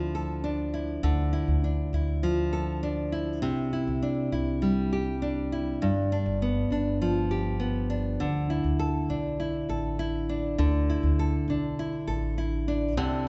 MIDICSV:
0, 0, Header, 1, 4, 480
1, 0, Start_track
1, 0, Tempo, 597015
1, 834, Time_signature, 4, 2, 24, 8
1, 10677, End_track
2, 0, Start_track
2, 0, Title_t, "Nylon-string guitar"
2, 0, Program_c, 0, 24
2, 0, Note_on_c, 0, 50, 73
2, 0, Note_on_c, 0, 53, 56
2, 0, Note_on_c, 0, 62, 50
2, 0, Note_on_c, 0, 64, 52
2, 0, Note_on_c, 0, 69, 52
2, 116, Note_off_c, 0, 69, 0
2, 119, Note_on_c, 0, 69, 52
2, 348, Note_off_c, 0, 62, 0
2, 352, Note_on_c, 0, 62, 53
2, 589, Note_off_c, 0, 64, 0
2, 592, Note_on_c, 0, 64, 55
2, 826, Note_off_c, 0, 50, 0
2, 829, Note_on_c, 0, 50, 70
2, 1064, Note_off_c, 0, 64, 0
2, 1068, Note_on_c, 0, 64, 53
2, 1315, Note_off_c, 0, 62, 0
2, 1318, Note_on_c, 0, 62, 50
2, 1556, Note_off_c, 0, 64, 0
2, 1559, Note_on_c, 0, 64, 48
2, 1784, Note_off_c, 0, 53, 0
2, 1793, Note_on_c, 0, 53, 63
2, 2022, Note_off_c, 0, 69, 0
2, 2032, Note_on_c, 0, 69, 51
2, 2271, Note_off_c, 0, 62, 0
2, 2275, Note_on_c, 0, 62, 56
2, 2508, Note_off_c, 0, 64, 0
2, 2511, Note_on_c, 0, 64, 56
2, 2746, Note_off_c, 0, 50, 0
2, 2750, Note_on_c, 0, 48, 74
2, 2801, Note_off_c, 0, 69, 0
2, 2802, Note_off_c, 0, 53, 0
2, 2994, Note_off_c, 0, 64, 0
2, 2997, Note_on_c, 0, 64, 53
2, 3022, Note_off_c, 0, 62, 0
2, 3236, Note_on_c, 0, 62, 54
2, 3467, Note_off_c, 0, 64, 0
2, 3476, Note_on_c, 0, 64, 53
2, 3714, Note_on_c, 0, 55, 60
2, 3961, Note_on_c, 0, 67, 53
2, 4194, Note_off_c, 0, 62, 0
2, 4197, Note_on_c, 0, 62, 51
2, 4431, Note_off_c, 0, 64, 0
2, 4441, Note_on_c, 0, 64, 55
2, 4671, Note_off_c, 0, 48, 0
2, 4679, Note_on_c, 0, 43, 73
2, 4725, Note_off_c, 0, 64, 0
2, 4921, Note_off_c, 0, 62, 0
2, 4921, Note_on_c, 0, 62, 57
2, 5162, Note_on_c, 0, 59, 56
2, 5400, Note_off_c, 0, 62, 0
2, 5403, Note_on_c, 0, 62, 53
2, 5637, Note_off_c, 0, 55, 0
2, 5640, Note_on_c, 0, 53, 56
2, 5665, Note_off_c, 0, 67, 0
2, 5876, Note_on_c, 0, 67, 55
2, 6098, Note_off_c, 0, 59, 0
2, 6108, Note_on_c, 0, 59, 53
2, 6347, Note_off_c, 0, 62, 0
2, 6350, Note_on_c, 0, 62, 57
2, 6593, Note_on_c, 0, 50, 72
2, 6595, Note_off_c, 0, 43, 0
2, 6638, Note_off_c, 0, 59, 0
2, 6642, Note_off_c, 0, 67, 0
2, 6830, Note_off_c, 0, 62, 0
2, 6833, Note_on_c, 0, 64, 55
2, 6857, Note_off_c, 0, 53, 0
2, 7070, Note_on_c, 0, 69, 57
2, 7315, Note_on_c, 0, 62, 57
2, 7552, Note_off_c, 0, 64, 0
2, 7555, Note_on_c, 0, 64, 52
2, 7785, Note_off_c, 0, 69, 0
2, 7794, Note_on_c, 0, 69, 56
2, 8029, Note_off_c, 0, 64, 0
2, 8033, Note_on_c, 0, 64, 57
2, 8273, Note_off_c, 0, 62, 0
2, 8276, Note_on_c, 0, 62, 56
2, 8506, Note_off_c, 0, 50, 0
2, 8509, Note_on_c, 0, 50, 75
2, 8757, Note_off_c, 0, 64, 0
2, 8760, Note_on_c, 0, 64, 57
2, 8989, Note_off_c, 0, 69, 0
2, 8999, Note_on_c, 0, 69, 61
2, 9241, Note_off_c, 0, 62, 0
2, 9244, Note_on_c, 0, 62, 56
2, 9477, Note_off_c, 0, 64, 0
2, 9480, Note_on_c, 0, 64, 58
2, 9698, Note_off_c, 0, 69, 0
2, 9708, Note_on_c, 0, 69, 54
2, 9949, Note_off_c, 0, 64, 0
2, 9952, Note_on_c, 0, 64, 55
2, 10191, Note_off_c, 0, 62, 0
2, 10194, Note_on_c, 0, 62, 59
2, 10427, Note_off_c, 0, 50, 0
2, 10430, Note_on_c, 0, 48, 73
2, 10476, Note_off_c, 0, 69, 0
2, 10666, Note_off_c, 0, 64, 0
2, 10677, Note_off_c, 0, 48, 0
2, 10677, Note_off_c, 0, 62, 0
2, 10677, End_track
3, 0, Start_track
3, 0, Title_t, "Five-string banjo"
3, 0, Program_c, 1, 105
3, 10433, Note_on_c, 1, 50, 78
3, 10677, Note_off_c, 1, 50, 0
3, 10677, End_track
4, 0, Start_track
4, 0, Title_t, "Upright bass"
4, 0, Program_c, 2, 32
4, 0, Note_on_c, 2, 38, 82
4, 801, Note_off_c, 2, 38, 0
4, 830, Note_on_c, 2, 38, 86
4, 1163, Note_off_c, 2, 38, 0
4, 1189, Note_on_c, 2, 38, 80
4, 1523, Note_off_c, 2, 38, 0
4, 1551, Note_on_c, 2, 38, 85
4, 2756, Note_off_c, 2, 38, 0
4, 2756, Note_on_c, 2, 36, 82
4, 3086, Note_off_c, 2, 36, 0
4, 3116, Note_on_c, 2, 36, 82
4, 3446, Note_off_c, 2, 36, 0
4, 3475, Note_on_c, 2, 36, 87
4, 4642, Note_off_c, 2, 36, 0
4, 4676, Note_on_c, 2, 31, 82
4, 5006, Note_off_c, 2, 31, 0
4, 5032, Note_on_c, 2, 31, 81
4, 5363, Note_off_c, 2, 31, 0
4, 5391, Note_on_c, 2, 31, 83
4, 6559, Note_off_c, 2, 31, 0
4, 6590, Note_on_c, 2, 38, 84
4, 6922, Note_off_c, 2, 38, 0
4, 6947, Note_on_c, 2, 38, 80
4, 7280, Note_off_c, 2, 38, 0
4, 7307, Note_on_c, 2, 35, 75
4, 7757, Note_off_c, 2, 35, 0
4, 7788, Note_on_c, 2, 33, 77
4, 8477, Note_off_c, 2, 33, 0
4, 8510, Note_on_c, 2, 38, 94
4, 8841, Note_off_c, 2, 38, 0
4, 8869, Note_on_c, 2, 38, 84
4, 9201, Note_off_c, 2, 38, 0
4, 9228, Note_on_c, 2, 35, 85
4, 9677, Note_off_c, 2, 35, 0
4, 9712, Note_on_c, 2, 33, 75
4, 10427, Note_off_c, 2, 33, 0
4, 10427, Note_on_c, 2, 36, 89
4, 10677, Note_off_c, 2, 36, 0
4, 10677, End_track
0, 0, End_of_file